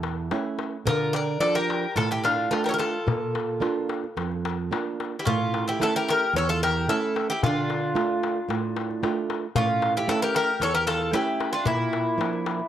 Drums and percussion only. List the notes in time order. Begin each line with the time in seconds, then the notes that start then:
0.03 darbuka tek
0.31 darbuka tek
0.59 darbuka tek
0.87 darbuka dum
1.14 darbuka tek
1.42 darbuka tek
1.70 darbuka tek
1.98 darbuka tek, darbuka dum
2.25 darbuka tek
2.53 darbuka tek
2.80 darbuka tek
3.08 darbuka dum
3.35 darbuka tek
3.62 darbuka tek
3.89 darbuka tek
4.04 darbuka tek
4.17 darbuka tek
4.32 darbuka tek
4.45 darbuka tek
4.72 darbuka tek
5.00 darbuka tek
5.27 darbuka dum
5.54 darbuka tek
5.81 darbuka tek
6.09 darbuka tek
6.36 darbuka tek
6.63 darbuka tek
6.77 darbuka tek
6.90 darbuka tek
7.16 darbuka tek
7.43 darbuka dum
7.70 darbuka tek
7.96 darbuka tek
8.23 darbuka tek
8.50 darbuka tek
8.76 darbuka tek
8.91 darbuka tek
9.03 darbuka tek
9.30 darbuka tek
9.56 darbuka dum
9.82 darbuka tek
10.09 darbuka tek
10.35 darbuka tek
10.61 darbuka tek
10.88 darbuka tek
11.01 darbuka tek
11.14 darbuka tek
11.40 darbuka tek
11.66 darbuka dum
11.80 darbuka tek
11.93 darbuka tek
12.07 darbuka tek
12.21 darbuka tek
12.33 darbuka tek
12.46 darbuka tek
12.59 darbuka tek